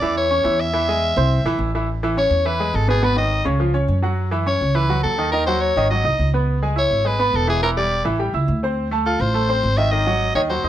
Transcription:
Already playing: soprano saxophone D5
0.02 upright bass E2, grand piano E3 E4 E5
0.17 soprano saxophone C#5
0.30 grand piano C#4 C#5 C#6
0.44 upright bass E2, grand piano E3 E4 E5
0.60 soprano saxophone E5
0.73 grand piano E3 E4 E5
0.89 grand piano G#3 G#4 G#5
1.16 upright bass C2, grand piano C4 C5 C6
1.44 upright bass A#1, grand piano E3 E4 E5
1.58 upright bass A1
1.75 grand piano E3 E4 E5
2.03 grand piano E3 E4 E5
2.17 grand piano C#4 C#5 C#6, soprano saxophone C#5
2.30 upright bass E2
2.45 grand piano E3 E4 E5, soprano saxophone B4
2.60 grand piano G#3 G#4 G#5
2.74 upright bass G#1, soprano saxophone A4
2.88 grand piano B2 B3 B4, soprano saxophone G#4
3.02 grand piano B2 B3 B4, soprano saxophone B4
3.16 grand piano D#3 D#4 D#5, soprano saxophone D#5
3.45 upright bass C#2, grand piano C#3 C#4 C#5
3.60 grand piano F3 F4 F5
3.74 grand piano C#4 C#5 C#6
3.88 upright bass F#2
4.03 grand piano F#3 F#4 F#5
4.31 grand piano E3 E4 E5
4.46 grand piano C#4 C#5 C#6, soprano saxophone C#5
4.61 upright bass C#2
4.75 grand piano E3 E4 E5, soprano saxophone B4
4.89 grand piano F#3 F#4 F#5
5.03 upright bass D#2, soprano saxophone A4
5.18 grand piano D#3 D#4 D#5
5.32 grand piano D#3 D#4 D#5, soprano saxophone A#4
5.47 grand piano F#3 F#4 F#5, soprano saxophone C5
5.61 soprano saxophone C#5
5.76 upright bass G#1, grand piano D#3 D#4 D#5
5.90 grand piano F#3 F#4 F#5, soprano saxophone D#5
6.04 upright bass C2, grand piano D#4 D#5 D#6
6.19 upright bass C#2
6.34 grand piano B3 B4 B5
6.62 grand piano G#3 G#4 G#5
6.76 grand piano E4 E5 E6, soprano saxophone C#5
6.91 upright bass G#1
7.05 grand piano G#3 G#4 G#5, soprano saxophone B4
7.19 grand piano B3 B4 B5
7.34 upright bass E1, soprano saxophone A4
7.47 grand piano E3 E4 E5, soprano saxophone G#4
7.63 grand piano E3 E4 E5, soprano saxophone A#4
7.77 grand piano G3 G4 G5, soprano saxophone D5
8.05 upright bass A1, grand piano E3 E4 E5
8.19 grand piano G3 G4 G5
8.33 upright bass C#2, grand piano E4 E5 E6
8.48 upright bass D2
8.63 grand piano C4 C5 C6
8.91 grand piano A3 A4 A5
9.06 grand piano F4 F5 F6, soprano saxophone A4
9.20 upright bass A1, soprano saxophone C5
9.34 grand piano A3 A4 A5
9.49 grand piano C4 C5 C6
9.63 upright bass G#1
9.78 grand piano D#3 D#4 D#5, soprano saxophone E5
9.92 grand piano D#3 D#4 D#5, soprano saxophone D#5
10.07 grand piano F#3 F#4 F#5
10.35 upright bass D#2, grand piano D#3 D#4 D#5, soprano saxophone C#5
10.49 grand piano F#3 F#4 F#5, soprano saxophone C5
10.64 upright bass F2, grand piano D#4 D#5 D#6

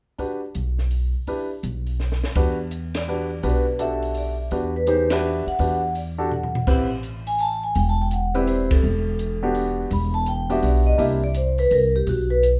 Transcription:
0.18 grand piano D4 F#4 G4 B4, kick, open hi-hat
0.55 upright bass B1, closed hi-hat
0.78 snare
0.91 open hi-hat
1.27 grand piano D4 E4 G4 B4, kick, open hi-hat
1.63 upright bass B1, closed hi-hat
1.87 open hi-hat
2.00 snare
2.12 snare
2.24 snare
2.35 upright bass E2, grand piano D4 F#4 G4 B4, kick, ride
2.71 closed hi-hat
2.94 vibraphone D5, snare, ride
3.08 grand piano D4 F#4 G4 B4
3.43 upright bass B1, grand piano D4 F#4 G4 B4, vibraphone B4, kick, open hi-hat
3.79 grand piano D4 F#4 G4 A4, vibraphone E5, closed hi-hat
4.03 open hi-hat
4.15 vibraphone D5, open hi-hat
4.51 upright bass E2, grand piano D4 F#4 G4 B4, kick, open hi-hat
4.76 vibraphone B4
4.87 grand piano D#4 G4 G#4 C5, closed hi-hat
5.10 grand piano D4 F#4 G4 B4, vibraphone E5, snare, ride
5.47 vibraphone F#5, muted upright bass stroke
5.59 upright bass E2, grand piano D4 F#4 G4 B4, kick, open hi-hat
5.95 vibraphone D5, open hi-hat
6.18 grand piano D4 F#4 G4 A4
6.31 vibraphone F#5, floor tom
6.43 floor tom
6.55 floor tom
6.67 upright bass A1, grand piano C4 E4 G4 B4, kick, crash
7.03 closed hi-hat
7.27 vibraphone G#5, open hi-hat
7.39 vibraphone A5, open hi-hat
7.63 vibraphone G#5
7.75 upright bass E1, vibraphone G5, kick, open hi-hat
7.89 vibraphone A5
8.02 vibraphone G5
8.11 vibraphone F#5, closed hi-hat
8.34 grand piano C4 E4 G4 B4, vibraphone D5, open hi-hat
8.47 vibraphone C5, open hi-hat
8.71 vibraphone A4, kick, ride
8.83 upright bass E1
9.19 closed hi-hat
9.43 grand piano B3 D4 F#4 G4
9.55 open hi-hat
9.91 upright bass E1, vibraphone B5, kick, open hi-hat
10.14 vibraphone A5
10.26 vibraphone G5, closed hi-hat
10.50 grand piano B3 D4 F#4 G4, vibraphone E5, open hi-hat
10.62 upright bass B1, vibraphone D5, open hi-hat
10.86 vibraphone D#5
10.98 upright bass C2, grand piano A#3 D4 E4 G4, vibraphone E5, kick, open hi-hat
11.24 vibraphone D5
11.34 vibraphone C5, closed hi-hat
11.58 vibraphone B4, open hi-hat
11.71 upright bass C2, vibraphone A#4, open hi-hat
11.96 vibraphone G4
12.07 upright bass B1, vibraphone F#4, kick, open hi-hat
12.30 vibraphone B4
12.43 closed hi-hat

